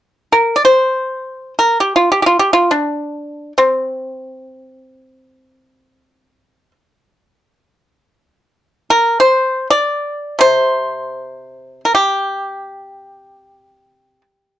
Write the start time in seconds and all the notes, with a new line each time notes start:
0.33 A#4
0.56 D5
0.65 C5
1.59 A#4
1.80 G4
1.96 F4
2.12 G4
2.22 F4 G4
2.39 G4
2.53 F4
2.71 D4
3.58 C4
8.90 A#4
9.20 C5
9.70 D5
10.39 C3 C5
11.85 A#4
11.95 G4